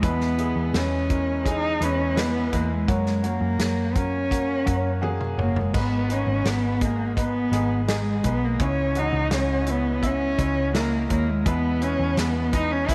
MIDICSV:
0, 0, Header, 1, 5, 480
1, 0, Start_track
1, 0, Tempo, 713946
1, 22, Time_signature, 4, 2, 24, 8
1, 8705, End_track
2, 0, Start_track
2, 0, Title_t, "Upright piano"
2, 0, Program_c, 0, 0
2, 0, Control_c, 0, 64, 127
2, 11, Note_on_c, 0, 56, 80
2, 15, Note_on_c, 0, 64, 72
2, 16, Note_on_c, 0, 47, 53
2, 21, Note_on_c, 0, 71, 90
2, 30, Control_c, 0, 64, 0
2, 135, Control_c, 0, 64, 127
2, 241, Note_off_c, 0, 56, 0
2, 244, Note_off_c, 0, 64, 0
2, 247, Note_off_c, 0, 71, 0
2, 252, Note_on_c, 0, 56, 64
2, 257, Note_on_c, 0, 64, 64
2, 264, Note_on_c, 0, 68, 72
2, 482, Note_off_c, 0, 56, 0
2, 484, Note_off_c, 0, 64, 0
2, 488, Note_off_c, 0, 68, 0
2, 492, Note_on_c, 0, 56, 55
2, 498, Note_on_c, 0, 64, 53
2, 505, Note_on_c, 0, 71, 68
2, 712, Note_off_c, 0, 47, 0
2, 721, Note_off_c, 0, 56, 0
2, 725, Note_off_c, 0, 64, 0
2, 729, Note_off_c, 0, 71, 0
2, 731, Note_on_c, 0, 56, 66
2, 735, Note_on_c, 0, 64, 56
2, 740, Note_on_c, 0, 70, 64
2, 960, Note_off_c, 0, 56, 0
2, 963, Note_off_c, 0, 64, 0
2, 966, Note_off_c, 0, 70, 0
2, 970, Note_on_c, 0, 56, 72
2, 975, Note_on_c, 0, 52, 61
2, 981, Note_on_c, 0, 68, 74
2, 1201, Note_off_c, 0, 56, 0
2, 1204, Note_off_c, 0, 52, 0
2, 1207, Note_off_c, 0, 68, 0
2, 1211, Note_on_c, 0, 56, 76
2, 1217, Note_on_c, 0, 64, 70
2, 1222, Note_on_c, 0, 71, 93
2, 1438, Note_off_c, 0, 56, 0
2, 1443, Note_off_c, 0, 64, 0
2, 1447, Note_off_c, 0, 71, 0
2, 1448, Note_on_c, 0, 56, 75
2, 1453, Note_on_c, 0, 64, 72
2, 1459, Note_on_c, 0, 71, 90
2, 1680, Note_off_c, 0, 56, 0
2, 1683, Note_off_c, 0, 64, 0
2, 1686, Note_off_c, 0, 71, 0
2, 1690, Note_on_c, 0, 56, 70
2, 1695, Note_on_c, 0, 64, 58
2, 1704, Note_on_c, 0, 71, 70
2, 1921, Note_off_c, 0, 56, 0
2, 1924, Note_off_c, 0, 64, 0
2, 1928, Note_off_c, 0, 71, 0
2, 1932, Note_on_c, 0, 58, 81
2, 1937, Note_on_c, 0, 49, 51
2, 1939, Note_on_c, 0, 66, 74
2, 1944, Note_on_c, 0, 73, 86
2, 1949, Control_c, 0, 64, 0
2, 2084, Control_c, 0, 64, 127
2, 2161, Note_off_c, 0, 58, 0
2, 2165, Note_off_c, 0, 66, 0
2, 2168, Note_off_c, 0, 73, 0
2, 2171, Note_on_c, 0, 58, 60
2, 2175, Note_on_c, 0, 66, 60
2, 2181, Note_on_c, 0, 73, 71
2, 2401, Note_off_c, 0, 58, 0
2, 2404, Note_off_c, 0, 66, 0
2, 2406, Note_off_c, 0, 73, 0
2, 2413, Note_on_c, 0, 58, 65
2, 2418, Note_on_c, 0, 66, 52
2, 2422, Note_on_c, 0, 73, 59
2, 2632, Note_off_c, 0, 49, 0
2, 2643, Note_off_c, 0, 58, 0
2, 2645, Note_off_c, 0, 66, 0
2, 2647, Note_off_c, 0, 73, 0
2, 2655, Note_on_c, 0, 58, 52
2, 2662, Note_on_c, 0, 66, 49
2, 2665, Note_on_c, 0, 70, 62
2, 2884, Note_off_c, 0, 58, 0
2, 2887, Note_off_c, 0, 66, 0
2, 2889, Note_off_c, 0, 70, 0
2, 2896, Note_on_c, 0, 58, 68
2, 2902, Note_on_c, 0, 66, 59
2, 2908, Note_on_c, 0, 70, 69
2, 3120, Note_off_c, 0, 58, 0
2, 3124, Note_off_c, 0, 66, 0
2, 3130, Note_off_c, 0, 70, 0
2, 3130, Note_on_c, 0, 58, 71
2, 3134, Note_on_c, 0, 66, 70
2, 3141, Note_on_c, 0, 73, 85
2, 3360, Note_off_c, 0, 58, 0
2, 3363, Note_off_c, 0, 66, 0
2, 3367, Note_off_c, 0, 73, 0
2, 3370, Note_on_c, 0, 58, 88
2, 3374, Note_on_c, 0, 66, 83
2, 3380, Note_on_c, 0, 68, 95
2, 3601, Note_off_c, 0, 58, 0
2, 3603, Note_off_c, 0, 66, 0
2, 3606, Note_off_c, 0, 68, 0
2, 3613, Note_on_c, 0, 58, 62
2, 3617, Note_on_c, 0, 66, 54
2, 3621, Note_on_c, 0, 73, 66
2, 3843, Note_off_c, 0, 58, 0
2, 3844, Note_off_c, 0, 66, 0
2, 3847, Note_off_c, 0, 73, 0
2, 3855, Note_on_c, 0, 56, 77
2, 3860, Note_on_c, 0, 44, 52
2, 3861, Note_on_c, 0, 63, 64
2, 3863, Note_on_c, 0, 51, 52
2, 3867, Note_on_c, 0, 71, 84
2, 3870, Control_c, 0, 64, 0
2, 3973, Control_c, 0, 64, 127
2, 4084, Note_off_c, 0, 56, 0
2, 4087, Note_off_c, 0, 63, 0
2, 4089, Note_off_c, 0, 71, 0
2, 4095, Note_on_c, 0, 56, 67
2, 4101, Note_on_c, 0, 63, 57
2, 4104, Note_on_c, 0, 71, 62
2, 4321, Note_off_c, 0, 56, 0
2, 4324, Note_off_c, 0, 63, 0
2, 4328, Note_off_c, 0, 71, 0
2, 4331, Note_on_c, 0, 56, 60
2, 4334, Note_on_c, 0, 63, 52
2, 4339, Note_on_c, 0, 66, 60
2, 4554, Note_off_c, 0, 44, 0
2, 4556, Note_off_c, 0, 51, 0
2, 4561, Note_off_c, 0, 56, 0
2, 4563, Note_off_c, 0, 63, 0
2, 4566, Note_off_c, 0, 66, 0
2, 4576, Note_on_c, 0, 56, 62
2, 4578, Note_on_c, 0, 63, 48
2, 4585, Note_on_c, 0, 68, 64
2, 4802, Note_off_c, 0, 56, 0
2, 4805, Note_off_c, 0, 63, 0
2, 4809, Note_off_c, 0, 68, 0
2, 4812, Note_on_c, 0, 56, 61
2, 4818, Note_on_c, 0, 63, 59
2, 4822, Note_on_c, 0, 71, 67
2, 5042, Note_off_c, 0, 56, 0
2, 5045, Note_off_c, 0, 63, 0
2, 5047, Note_off_c, 0, 71, 0
2, 5053, Note_on_c, 0, 56, 74
2, 5058, Note_on_c, 0, 63, 67
2, 5065, Note_on_c, 0, 68, 83
2, 5282, Note_off_c, 0, 56, 0
2, 5285, Note_off_c, 0, 63, 0
2, 5288, Note_off_c, 0, 68, 0
2, 5296, Note_on_c, 0, 56, 73
2, 5299, Note_on_c, 0, 63, 68
2, 5303, Note_on_c, 0, 68, 88
2, 5524, Note_off_c, 0, 56, 0
2, 5526, Note_off_c, 0, 63, 0
2, 5528, Note_off_c, 0, 68, 0
2, 5535, Note_on_c, 0, 56, 70
2, 5539, Note_on_c, 0, 63, 59
2, 5544, Note_on_c, 0, 71, 69
2, 5764, Note_off_c, 0, 56, 0
2, 5765, Note_off_c, 0, 63, 0
2, 5768, Note_off_c, 0, 71, 0
2, 5778, Note_on_c, 0, 56, 78
2, 5783, Note_on_c, 0, 44, 54
2, 5784, Note_on_c, 0, 64, 67
2, 5790, Note_on_c, 0, 73, 96
2, 5792, Control_c, 0, 64, 0
2, 5898, Control_c, 0, 64, 127
2, 6005, Note_off_c, 0, 56, 0
2, 6008, Note_off_c, 0, 64, 0
2, 6011, Note_off_c, 0, 73, 0
2, 6021, Note_on_c, 0, 56, 61
2, 6026, Note_on_c, 0, 52, 62
2, 6031, Note_on_c, 0, 66, 75
2, 6245, Note_off_c, 0, 56, 0
2, 6249, Note_off_c, 0, 52, 0
2, 6252, Note_off_c, 0, 66, 0
2, 6256, Note_on_c, 0, 56, 58
2, 6262, Note_on_c, 0, 64, 57
2, 6265, Note_on_c, 0, 73, 70
2, 6476, Note_off_c, 0, 44, 0
2, 6484, Note_off_c, 0, 56, 0
2, 6487, Note_off_c, 0, 64, 0
2, 6489, Note_off_c, 0, 73, 0
2, 6498, Note_on_c, 0, 56, 61
2, 6502, Note_on_c, 0, 64, 54
2, 6509, Note_on_c, 0, 73, 60
2, 6723, Note_off_c, 0, 56, 0
2, 6727, Note_off_c, 0, 64, 0
2, 6731, Note_off_c, 0, 73, 0
2, 6733, Note_on_c, 0, 56, 61
2, 6740, Note_on_c, 0, 64, 59
2, 6745, Note_on_c, 0, 76, 76
2, 6963, Note_off_c, 0, 56, 0
2, 6966, Note_off_c, 0, 64, 0
2, 6969, Note_off_c, 0, 76, 0
2, 6979, Note_on_c, 0, 56, 80
2, 6984, Note_on_c, 0, 64, 63
2, 6989, Note_on_c, 0, 73, 92
2, 7206, Note_off_c, 0, 56, 0
2, 7208, Note_off_c, 0, 64, 0
2, 7211, Note_off_c, 0, 73, 0
2, 7216, Note_on_c, 0, 56, 75
2, 7220, Note_on_c, 0, 64, 75
2, 7226, Note_on_c, 0, 70, 82
2, 7444, Note_off_c, 0, 56, 0
2, 7447, Note_off_c, 0, 64, 0
2, 7449, Note_off_c, 0, 70, 0
2, 7454, Note_on_c, 0, 56, 64
2, 7464, Note_on_c, 0, 64, 62
2, 7467, Note_on_c, 0, 73, 68
2, 7684, Note_off_c, 0, 56, 0
2, 7688, Note_off_c, 0, 64, 0
2, 7690, Note_off_c, 0, 73, 0
2, 7700, Note_on_c, 0, 56, 80
2, 7703, Note_on_c, 0, 64, 78
2, 7704, Note_on_c, 0, 47, 57
2, 7709, Note_on_c, 0, 71, 81
2, 7710, Control_c, 0, 64, 0
2, 7839, Control_c, 0, 64, 127
2, 7926, Note_off_c, 0, 56, 0
2, 7928, Note_off_c, 0, 64, 0
2, 7931, Note_off_c, 0, 71, 0
2, 7939, Note_on_c, 0, 56, 63
2, 7946, Note_on_c, 0, 64, 56
2, 7948, Note_on_c, 0, 71, 70
2, 8166, Note_off_c, 0, 56, 0
2, 8170, Note_off_c, 0, 64, 0
2, 8170, Note_off_c, 0, 71, 0
2, 8179, Note_on_c, 0, 56, 60
2, 8183, Note_on_c, 0, 64, 58
2, 8189, Note_on_c, 0, 71, 67
2, 8396, Note_off_c, 0, 47, 0
2, 8406, Note_off_c, 0, 56, 0
2, 8408, Note_off_c, 0, 64, 0
2, 8411, Note_off_c, 0, 71, 0
2, 8420, Note_on_c, 0, 56, 65
2, 8426, Note_on_c, 0, 64, 56
2, 8429, Note_on_c, 0, 71, 59
2, 8647, Note_off_c, 0, 56, 0
2, 8650, Note_off_c, 0, 64, 0
2, 8651, Note_off_c, 0, 71, 0
2, 8663, Note_on_c, 0, 56, 70
2, 8665, Note_on_c, 0, 64, 67
2, 8672, Note_on_c, 0, 71, 73
2, 8705, Note_off_c, 0, 56, 0
2, 8705, Note_off_c, 0, 64, 0
2, 8705, Note_off_c, 0, 71, 0
2, 8705, End_track
3, 0, Start_track
3, 0, Title_t, "Cello"
3, 0, Program_c, 1, 42
3, 34, Note_on_c, 1, 59, 88
3, 514, Note_on_c, 1, 61, 85
3, 524, Note_off_c, 1, 59, 0
3, 995, Note_on_c, 1, 63, 92
3, 1005, Note_off_c, 1, 61, 0
3, 1239, Note_on_c, 1, 61, 82
3, 1249, Note_off_c, 1, 63, 0
3, 1473, Note_on_c, 1, 59, 94
3, 1483, Note_off_c, 1, 61, 0
3, 1714, Note_on_c, 1, 58, 79
3, 1724, Note_off_c, 1, 59, 0
3, 1834, Note_on_c, 1, 56, 75
3, 1845, Note_off_c, 1, 58, 0
3, 2191, Note_on_c, 1, 58, 73
3, 2201, Note_off_c, 1, 56, 0
3, 2673, Note_on_c, 1, 61, 78
3, 2683, Note_off_c, 1, 58, 0
3, 3387, Note_off_c, 1, 61, 0
3, 3641, Note_on_c, 1, 58, 68
3, 3762, Note_on_c, 1, 56, 66
3, 3772, Note_off_c, 1, 58, 0
3, 3884, Note_on_c, 1, 59, 79
3, 3894, Note_off_c, 1, 56, 0
3, 4117, Note_on_c, 1, 61, 71
3, 4127, Note_off_c, 1, 59, 0
3, 4359, Note_on_c, 1, 59, 80
3, 4369, Note_off_c, 1, 61, 0
3, 4602, Note_on_c, 1, 58, 67
3, 4612, Note_off_c, 1, 59, 0
3, 4832, Note_off_c, 1, 58, 0
3, 4836, Note_on_c, 1, 59, 78
3, 5282, Note_off_c, 1, 59, 0
3, 5312, Note_on_c, 1, 56, 77
3, 5551, Note_on_c, 1, 59, 85
3, 5561, Note_off_c, 1, 56, 0
3, 5682, Note_on_c, 1, 58, 72
3, 5692, Note_off_c, 1, 59, 0
3, 5797, Note_on_c, 1, 61, 82
3, 5807, Note_off_c, 1, 58, 0
3, 6043, Note_on_c, 1, 63, 71
3, 6053, Note_off_c, 1, 61, 0
3, 6273, Note_off_c, 1, 63, 0
3, 6278, Note_on_c, 1, 61, 84
3, 6526, Note_on_c, 1, 59, 76
3, 6536, Note_off_c, 1, 61, 0
3, 6766, Note_on_c, 1, 61, 93
3, 6776, Note_off_c, 1, 59, 0
3, 7228, Note_off_c, 1, 61, 0
3, 7232, Note_on_c, 1, 58, 82
3, 7451, Note_off_c, 1, 58, 0
3, 7472, Note_on_c, 1, 58, 80
3, 7596, Note_on_c, 1, 56, 75
3, 7606, Note_off_c, 1, 58, 0
3, 7704, Note_on_c, 1, 59, 85
3, 7714, Note_off_c, 1, 56, 0
3, 7951, Note_on_c, 1, 61, 88
3, 7961, Note_off_c, 1, 59, 0
3, 8195, Note_on_c, 1, 59, 83
3, 8206, Note_off_c, 1, 61, 0
3, 8433, Note_on_c, 1, 63, 84
3, 8443, Note_off_c, 1, 59, 0
3, 8553, Note_on_c, 1, 61, 83
3, 8563, Note_off_c, 1, 63, 0
3, 8666, Note_on_c, 1, 64, 95
3, 8676, Note_off_c, 1, 61, 0
3, 8705, Note_off_c, 1, 64, 0
3, 8705, End_track
4, 0, Start_track
4, 0, Title_t, "Picked electric bass"
4, 0, Program_c, 2, 34
4, 20, Note_on_c, 2, 40, 80
4, 355, Note_off_c, 2, 40, 0
4, 375, Note_on_c, 2, 40, 79
4, 490, Note_off_c, 2, 40, 0
4, 496, Note_on_c, 2, 40, 80
4, 1192, Note_off_c, 2, 40, 0
4, 1216, Note_on_c, 2, 40, 88
4, 1672, Note_off_c, 2, 40, 0
4, 1700, Note_on_c, 2, 40, 69
4, 1924, Note_off_c, 2, 40, 0
4, 1939, Note_on_c, 2, 42, 71
4, 2275, Note_off_c, 2, 42, 0
4, 2292, Note_on_c, 2, 42, 86
4, 2408, Note_off_c, 2, 42, 0
4, 2412, Note_on_c, 2, 42, 81
4, 3110, Note_off_c, 2, 42, 0
4, 3136, Note_on_c, 2, 42, 75
4, 3592, Note_off_c, 2, 42, 0
4, 3616, Note_on_c, 2, 30, 69
4, 3842, Note_off_c, 2, 30, 0
4, 3857, Note_on_c, 2, 32, 78
4, 4194, Note_off_c, 2, 32, 0
4, 4214, Note_on_c, 2, 32, 85
4, 4329, Note_off_c, 2, 32, 0
4, 4333, Note_on_c, 2, 32, 88
4, 5030, Note_off_c, 2, 32, 0
4, 5053, Note_on_c, 2, 32, 76
4, 5510, Note_off_c, 2, 32, 0
4, 5540, Note_on_c, 2, 35, 76
4, 5764, Note_off_c, 2, 35, 0
4, 5779, Note_on_c, 2, 37, 71
4, 6115, Note_off_c, 2, 37, 0
4, 6136, Note_on_c, 2, 37, 84
4, 6250, Note_off_c, 2, 37, 0
4, 6254, Note_on_c, 2, 37, 76
4, 6951, Note_off_c, 2, 37, 0
4, 6983, Note_on_c, 2, 37, 84
4, 7436, Note_off_c, 2, 37, 0
4, 7466, Note_on_c, 2, 39, 73
4, 7687, Note_off_c, 2, 39, 0
4, 7705, Note_on_c, 2, 40, 75
4, 8039, Note_off_c, 2, 40, 0
4, 8065, Note_on_c, 2, 40, 82
4, 8175, Note_off_c, 2, 40, 0
4, 8185, Note_on_c, 2, 40, 82
4, 8705, Note_off_c, 2, 40, 0
4, 8705, End_track
5, 0, Start_track
5, 0, Title_t, "Drums"
5, 19, Note_on_c, 9, 42, 69
5, 20, Note_on_c, 9, 36, 94
5, 86, Note_off_c, 9, 42, 0
5, 87, Note_off_c, 9, 36, 0
5, 139, Note_on_c, 9, 38, 33
5, 206, Note_off_c, 9, 38, 0
5, 258, Note_on_c, 9, 42, 51
5, 326, Note_off_c, 9, 42, 0
5, 498, Note_on_c, 9, 42, 63
5, 500, Note_on_c, 9, 38, 93
5, 566, Note_off_c, 9, 42, 0
5, 568, Note_off_c, 9, 38, 0
5, 738, Note_on_c, 9, 42, 59
5, 740, Note_on_c, 9, 36, 80
5, 806, Note_off_c, 9, 42, 0
5, 807, Note_off_c, 9, 36, 0
5, 979, Note_on_c, 9, 36, 73
5, 982, Note_on_c, 9, 42, 66
5, 1046, Note_off_c, 9, 36, 0
5, 1049, Note_off_c, 9, 42, 0
5, 1221, Note_on_c, 9, 42, 65
5, 1288, Note_off_c, 9, 42, 0
5, 1460, Note_on_c, 9, 42, 71
5, 1461, Note_on_c, 9, 38, 102
5, 1527, Note_off_c, 9, 42, 0
5, 1528, Note_off_c, 9, 38, 0
5, 1699, Note_on_c, 9, 42, 62
5, 1701, Note_on_c, 9, 36, 73
5, 1766, Note_off_c, 9, 42, 0
5, 1768, Note_off_c, 9, 36, 0
5, 1939, Note_on_c, 9, 36, 103
5, 1941, Note_on_c, 9, 42, 67
5, 2006, Note_off_c, 9, 36, 0
5, 2008, Note_off_c, 9, 42, 0
5, 2057, Note_on_c, 9, 38, 33
5, 2125, Note_off_c, 9, 38, 0
5, 2176, Note_on_c, 9, 42, 52
5, 2243, Note_off_c, 9, 42, 0
5, 2416, Note_on_c, 9, 42, 78
5, 2418, Note_on_c, 9, 38, 87
5, 2483, Note_off_c, 9, 42, 0
5, 2485, Note_off_c, 9, 38, 0
5, 2658, Note_on_c, 9, 42, 57
5, 2660, Note_on_c, 9, 36, 87
5, 2725, Note_off_c, 9, 42, 0
5, 2727, Note_off_c, 9, 36, 0
5, 2899, Note_on_c, 9, 36, 75
5, 2903, Note_on_c, 9, 42, 75
5, 2966, Note_off_c, 9, 36, 0
5, 2970, Note_off_c, 9, 42, 0
5, 3140, Note_on_c, 9, 36, 68
5, 3140, Note_on_c, 9, 42, 66
5, 3207, Note_off_c, 9, 36, 0
5, 3207, Note_off_c, 9, 42, 0
5, 3379, Note_on_c, 9, 48, 48
5, 3447, Note_off_c, 9, 48, 0
5, 3500, Note_on_c, 9, 47, 50
5, 3567, Note_off_c, 9, 47, 0
5, 3622, Note_on_c, 9, 45, 69
5, 3690, Note_off_c, 9, 45, 0
5, 3741, Note_on_c, 9, 43, 69
5, 3808, Note_off_c, 9, 43, 0
5, 3861, Note_on_c, 9, 36, 90
5, 3861, Note_on_c, 9, 49, 67
5, 3928, Note_off_c, 9, 36, 0
5, 3929, Note_off_c, 9, 49, 0
5, 4099, Note_on_c, 9, 42, 51
5, 4167, Note_off_c, 9, 42, 0
5, 4338, Note_on_c, 9, 42, 67
5, 4340, Note_on_c, 9, 38, 88
5, 4406, Note_off_c, 9, 42, 0
5, 4408, Note_off_c, 9, 38, 0
5, 4578, Note_on_c, 9, 42, 55
5, 4581, Note_on_c, 9, 36, 79
5, 4645, Note_off_c, 9, 42, 0
5, 4648, Note_off_c, 9, 36, 0
5, 4820, Note_on_c, 9, 36, 75
5, 4822, Note_on_c, 9, 42, 67
5, 4887, Note_off_c, 9, 36, 0
5, 4889, Note_off_c, 9, 42, 0
5, 5060, Note_on_c, 9, 42, 70
5, 5127, Note_off_c, 9, 42, 0
5, 5299, Note_on_c, 9, 42, 77
5, 5301, Note_on_c, 9, 38, 96
5, 5367, Note_off_c, 9, 42, 0
5, 5368, Note_off_c, 9, 38, 0
5, 5539, Note_on_c, 9, 42, 66
5, 5542, Note_on_c, 9, 36, 75
5, 5606, Note_off_c, 9, 42, 0
5, 5609, Note_off_c, 9, 36, 0
5, 5778, Note_on_c, 9, 42, 73
5, 5780, Note_on_c, 9, 36, 100
5, 5845, Note_off_c, 9, 42, 0
5, 5847, Note_off_c, 9, 36, 0
5, 6018, Note_on_c, 9, 42, 49
5, 6085, Note_off_c, 9, 42, 0
5, 6258, Note_on_c, 9, 42, 68
5, 6260, Note_on_c, 9, 38, 94
5, 6326, Note_off_c, 9, 42, 0
5, 6328, Note_off_c, 9, 38, 0
5, 6498, Note_on_c, 9, 42, 58
5, 6565, Note_off_c, 9, 42, 0
5, 6742, Note_on_c, 9, 36, 72
5, 6745, Note_on_c, 9, 42, 68
5, 6809, Note_off_c, 9, 36, 0
5, 6812, Note_off_c, 9, 42, 0
5, 6983, Note_on_c, 9, 36, 76
5, 6983, Note_on_c, 9, 42, 65
5, 7050, Note_off_c, 9, 36, 0
5, 7050, Note_off_c, 9, 42, 0
5, 7224, Note_on_c, 9, 42, 70
5, 7226, Note_on_c, 9, 38, 100
5, 7292, Note_off_c, 9, 42, 0
5, 7293, Note_off_c, 9, 38, 0
5, 7462, Note_on_c, 9, 42, 63
5, 7466, Note_on_c, 9, 36, 82
5, 7530, Note_off_c, 9, 42, 0
5, 7533, Note_off_c, 9, 36, 0
5, 7704, Note_on_c, 9, 42, 73
5, 7705, Note_on_c, 9, 36, 100
5, 7771, Note_off_c, 9, 42, 0
5, 7772, Note_off_c, 9, 36, 0
5, 7944, Note_on_c, 9, 42, 55
5, 8011, Note_off_c, 9, 42, 0
5, 8183, Note_on_c, 9, 42, 67
5, 8185, Note_on_c, 9, 38, 90
5, 8250, Note_off_c, 9, 42, 0
5, 8252, Note_off_c, 9, 38, 0
5, 8423, Note_on_c, 9, 42, 62
5, 8425, Note_on_c, 9, 36, 89
5, 8490, Note_off_c, 9, 42, 0
5, 8492, Note_off_c, 9, 36, 0
5, 8664, Note_on_c, 9, 36, 78
5, 8666, Note_on_c, 9, 42, 72
5, 8705, Note_off_c, 9, 36, 0
5, 8705, Note_off_c, 9, 42, 0
5, 8705, End_track
0, 0, End_of_file